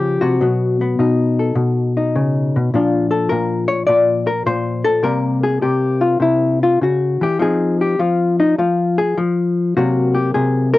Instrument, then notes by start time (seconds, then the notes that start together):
hollow-body jazz guitar
Already playing: C#3 F3 C4 D#4 G4
0.21 C3 F#4
0.41 B2 F#3 B3
0.81 B3
0.99 B2 D#4
1.39 A4
1.55 B2
1.97 D#4
2.15 C#3
2.56 B2
2.74 A#2 F3 D4 F4
3.11 A4
3.29 A#2 A#4
3.68 C#5
3.87 A#2 D5
4.27 A#4
4.46 A#2 C5
4.84 A4
5.03 C3 G3 A#3 A#4
5.44 G#4
5.62 C3 G4
6.01 F4
6.20 C3 E4
6.63 F4
6.81 C#3 F#4
7.21 E3 G4
7.39 F3 C4 D#4 G#4
7.81 G4
7.99 F3 F4
8.40 D#4
8.58 F3 F4
8.98 G#4
9.17 F3
9.77 C3 F#3 A#3 F#4
10.15 G4
10.34 C3 G#4
10.73 A#4